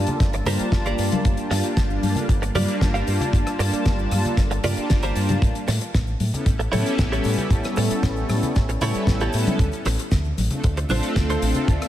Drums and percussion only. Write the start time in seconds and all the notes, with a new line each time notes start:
0.07 closed hi-hat, low conga, cabasa
0.20 kick, snare, closed hi-hat, cabasa
0.33 closed hi-hat, cabasa
0.46 open hi-hat, low conga, cabasa
0.59 closed hi-hat, cabasa
0.72 kick, snare, closed hi-hat, cabasa
0.86 closed hi-hat, cabasa
0.98 open hi-hat, cabasa
1.12 closed hi-hat, high conga, low conga, cabasa
1.25 kick, closed hi-hat, cabasa
1.37 closed hi-hat, cabasa
1.51 snare, open hi-hat, cabasa
1.64 closed hi-hat, cabasa
1.77 kick, snare, closed hi-hat, cabasa
1.90 cabasa
2.03 open hi-hat, high conga, cabasa
2.15 closed hi-hat, low conga, cabasa
2.29 kick, closed hi-hat, cabasa
2.43 closed hi-hat
2.55 open hi-hat, high conga, low conga, cabasa
2.68 closed hi-hat, cabasa
2.81 kick, snare, closed hi-hat, cabasa
2.95 closed hi-hat
3.07 open hi-hat, cabasa
3.20 closed hi-hat, low conga, cabasa
3.33 kick, closed hi-hat, cabasa
3.47 cross-stick, closed hi-hat, cabasa
3.59 open hi-hat, cabasa
3.73 closed hi-hat, cabasa
3.85 kick, snare, closed hi-hat, cabasa
3.99 cabasa
4.11 cross-stick, open hi-hat, high conga, cabasa
4.25 closed hi-hat, low conga, cabasa
4.37 kick, snare, closed hi-hat, cabasa
4.51 closed hi-hat, cabasa
4.64 open hi-hat, low conga, cabasa
4.77 closed hi-hat, cabasa
4.90 kick, snare, closed hi-hat, cabasa
5.03 closed hi-hat, cabasa
5.16 open hi-hat, cabasa
5.29 closed hi-hat, high conga, low conga, cabasa
5.42 kick, closed hi-hat, cabasa
5.55 closed hi-hat, cabasa
5.68 snare, open hi-hat, cabasa
5.81 closed hi-hat, cabasa
5.94 kick, snare, closed hi-hat, cabasa
6.07 cabasa
6.20 open hi-hat, high conga, cabasa
6.34 closed hi-hat, low conga, cabasa
6.46 kick, closed hi-hat, cabasa
6.60 closed hi-hat
6.73 open hi-hat, high conga, low conga, cabasa
6.86 closed hi-hat, cabasa
6.98 kick, snare, closed hi-hat, cabasa
7.13 closed hi-hat
7.24 open hi-hat, cabasa
7.38 closed hi-hat, low conga, cabasa
7.50 kick, closed hi-hat, cabasa
7.63 cross-stick, closed hi-hat, cabasa
7.76 open hi-hat, cabasa
7.89 closed hi-hat, cabasa
8.03 kick, snare, closed hi-hat, cabasa
8.16 cabasa
8.29 cross-stick, open hi-hat, high conga, cabasa
8.43 closed hi-hat, low conga, cabasa
8.55 kick, snare, closed hi-hat, cabasa
8.69 closed hi-hat, cabasa
8.81 open hi-hat, low conga, cabasa
8.94 closed hi-hat, cabasa
9.07 kick, snare, closed hi-hat, cabasa
9.20 closed hi-hat, cabasa
9.33 open hi-hat, cabasa
9.47 closed hi-hat, high conga, low conga, cabasa
9.59 kick, closed hi-hat, cabasa
9.72 closed hi-hat, cabasa
9.85 snare, open hi-hat, cabasa
9.99 closed hi-hat, cabasa
10.11 kick, snare, closed hi-hat, cabasa
10.25 cabasa
10.38 open hi-hat, high conga, cabasa
10.50 closed hi-hat, low conga, cabasa
10.64 kick, closed hi-hat, cabasa
10.77 closed hi-hat
10.89 open hi-hat, high conga, low conga, cabasa
11.03 closed hi-hat, cabasa
11.16 kick, snare, closed hi-hat, cabasa
11.30 closed hi-hat
11.42 open hi-hat, cabasa
11.55 closed hi-hat, low conga, cabasa
11.68 kick, closed hi-hat, cabasa
11.82 cross-stick, closed hi-hat, cabasa